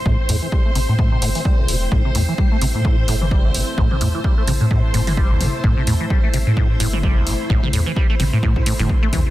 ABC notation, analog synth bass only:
X:1
M:4/4
L:1/16
Q:"Swing 16ths" 1/4=129
K:Am
V:1 name="Analog synth bass" clef=bass
A,,,2 E,, z3 A,,, A,,3 G,,, z3 E,,,2 | A,,,2 E,, z3 A,,, A,,3 G,,,4- G,,, z | A,,,2 E,, z3 A,,, A,,3 G,,,4- G,,, z | A,,,2 E,, z3 A,,, A,,3 G,,,4- G,,, z |
A,,,2 E,, z3 A,,, A,,3 z G,,, z2 E,, z |]